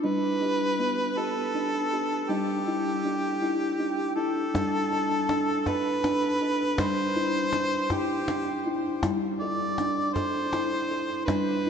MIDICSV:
0, 0, Header, 1, 4, 480
1, 0, Start_track
1, 0, Key_signature, 1, "major"
1, 0, Tempo, 749064
1, 29, Time_signature, 6, 3, 24, 8
1, 7496, End_track
2, 0, Start_track
2, 0, Title_t, "Harmonica"
2, 0, Program_c, 0, 22
2, 23, Note_on_c, 0, 71, 94
2, 755, Note_on_c, 0, 69, 87
2, 764, Note_off_c, 0, 71, 0
2, 1472, Note_on_c, 0, 67, 80
2, 1481, Note_off_c, 0, 69, 0
2, 2660, Note_off_c, 0, 67, 0
2, 2664, Note_on_c, 0, 69, 85
2, 3639, Note_on_c, 0, 71, 91
2, 3648, Note_off_c, 0, 69, 0
2, 4359, Note_on_c, 0, 72, 101
2, 4369, Note_off_c, 0, 71, 0
2, 5075, Note_on_c, 0, 67, 77
2, 5085, Note_off_c, 0, 72, 0
2, 5611, Note_off_c, 0, 67, 0
2, 6024, Note_on_c, 0, 74, 81
2, 6497, Note_on_c, 0, 72, 82
2, 6506, Note_off_c, 0, 74, 0
2, 7209, Note_off_c, 0, 72, 0
2, 7212, Note_on_c, 0, 71, 88
2, 7496, Note_off_c, 0, 71, 0
2, 7496, End_track
3, 0, Start_track
3, 0, Title_t, "Kalimba"
3, 0, Program_c, 1, 108
3, 23, Note_on_c, 1, 62, 72
3, 28, Note_on_c, 1, 55, 63
3, 266, Note_off_c, 1, 62, 0
3, 268, Note_on_c, 1, 67, 64
3, 508, Note_off_c, 1, 67, 0
3, 508, Note_on_c, 1, 59, 62
3, 748, Note_off_c, 1, 59, 0
3, 751, Note_on_c, 1, 67, 72
3, 990, Note_off_c, 1, 67, 0
3, 993, Note_on_c, 1, 62, 63
3, 1231, Note_off_c, 1, 62, 0
3, 1237, Note_on_c, 1, 67, 62
3, 1443, Note_off_c, 1, 55, 0
3, 1468, Note_on_c, 1, 55, 66
3, 1473, Note_off_c, 1, 67, 0
3, 1474, Note_on_c, 1, 62, 75
3, 1712, Note_off_c, 1, 62, 0
3, 1714, Note_on_c, 1, 64, 61
3, 1952, Note_off_c, 1, 64, 0
3, 1955, Note_on_c, 1, 62, 60
3, 2192, Note_off_c, 1, 62, 0
3, 2192, Note_on_c, 1, 64, 66
3, 2431, Note_off_c, 1, 64, 0
3, 2433, Note_on_c, 1, 62, 63
3, 2669, Note_on_c, 1, 64, 60
3, 2671, Note_off_c, 1, 62, 0
3, 2883, Note_off_c, 1, 55, 0
3, 2909, Note_off_c, 1, 64, 0
3, 2909, Note_on_c, 1, 55, 65
3, 2912, Note_on_c, 1, 62, 77
3, 3151, Note_off_c, 1, 62, 0
3, 3158, Note_on_c, 1, 69, 68
3, 3393, Note_off_c, 1, 69, 0
3, 3393, Note_on_c, 1, 62, 65
3, 3631, Note_off_c, 1, 62, 0
3, 3635, Note_on_c, 1, 69, 77
3, 3872, Note_off_c, 1, 69, 0
3, 3872, Note_on_c, 1, 62, 71
3, 4110, Note_off_c, 1, 62, 0
3, 4113, Note_on_c, 1, 69, 64
3, 4323, Note_off_c, 1, 55, 0
3, 4350, Note_on_c, 1, 55, 64
3, 4351, Note_off_c, 1, 69, 0
3, 4356, Note_on_c, 1, 62, 83
3, 4588, Note_on_c, 1, 64, 67
3, 4592, Note_off_c, 1, 62, 0
3, 4828, Note_off_c, 1, 64, 0
3, 4831, Note_on_c, 1, 62, 67
3, 5066, Note_on_c, 1, 64, 72
3, 5069, Note_off_c, 1, 62, 0
3, 5307, Note_off_c, 1, 64, 0
3, 5309, Note_on_c, 1, 62, 71
3, 5548, Note_off_c, 1, 62, 0
3, 5551, Note_on_c, 1, 64, 67
3, 5762, Note_off_c, 1, 55, 0
3, 5782, Note_off_c, 1, 64, 0
3, 5788, Note_on_c, 1, 55, 68
3, 5790, Note_on_c, 1, 64, 82
3, 6028, Note_off_c, 1, 64, 0
3, 6035, Note_on_c, 1, 69, 68
3, 6271, Note_off_c, 1, 69, 0
3, 6278, Note_on_c, 1, 62, 65
3, 6511, Note_on_c, 1, 69, 81
3, 6512, Note_off_c, 1, 62, 0
3, 6749, Note_off_c, 1, 69, 0
3, 6749, Note_on_c, 1, 64, 67
3, 6987, Note_off_c, 1, 64, 0
3, 6991, Note_on_c, 1, 69, 62
3, 7201, Note_off_c, 1, 55, 0
3, 7227, Note_on_c, 1, 62, 82
3, 7229, Note_off_c, 1, 69, 0
3, 7232, Note_on_c, 1, 55, 69
3, 7466, Note_off_c, 1, 62, 0
3, 7475, Note_on_c, 1, 64, 62
3, 7496, Note_off_c, 1, 55, 0
3, 7496, Note_off_c, 1, 64, 0
3, 7496, End_track
4, 0, Start_track
4, 0, Title_t, "Cajon"
4, 2915, Note_on_c, 9, 36, 49
4, 2915, Note_on_c, 9, 38, 46
4, 2979, Note_off_c, 9, 36, 0
4, 2979, Note_off_c, 9, 38, 0
4, 3391, Note_on_c, 9, 38, 46
4, 3455, Note_off_c, 9, 38, 0
4, 3628, Note_on_c, 9, 36, 50
4, 3628, Note_on_c, 9, 38, 17
4, 3692, Note_off_c, 9, 36, 0
4, 3692, Note_off_c, 9, 38, 0
4, 3871, Note_on_c, 9, 38, 50
4, 3935, Note_off_c, 9, 38, 0
4, 4347, Note_on_c, 9, 36, 56
4, 4347, Note_on_c, 9, 38, 58
4, 4411, Note_off_c, 9, 36, 0
4, 4411, Note_off_c, 9, 38, 0
4, 4823, Note_on_c, 9, 38, 48
4, 4887, Note_off_c, 9, 38, 0
4, 5063, Note_on_c, 9, 36, 51
4, 5063, Note_on_c, 9, 38, 15
4, 5127, Note_off_c, 9, 36, 0
4, 5127, Note_off_c, 9, 38, 0
4, 5306, Note_on_c, 9, 38, 54
4, 5370, Note_off_c, 9, 38, 0
4, 5785, Note_on_c, 9, 36, 51
4, 5785, Note_on_c, 9, 38, 51
4, 5849, Note_off_c, 9, 36, 0
4, 5849, Note_off_c, 9, 38, 0
4, 6267, Note_on_c, 9, 38, 45
4, 6331, Note_off_c, 9, 38, 0
4, 6509, Note_on_c, 9, 36, 51
4, 6509, Note_on_c, 9, 38, 16
4, 6573, Note_off_c, 9, 36, 0
4, 6573, Note_off_c, 9, 38, 0
4, 6746, Note_on_c, 9, 38, 49
4, 6810, Note_off_c, 9, 38, 0
4, 7228, Note_on_c, 9, 36, 55
4, 7228, Note_on_c, 9, 38, 50
4, 7292, Note_off_c, 9, 36, 0
4, 7292, Note_off_c, 9, 38, 0
4, 7496, End_track
0, 0, End_of_file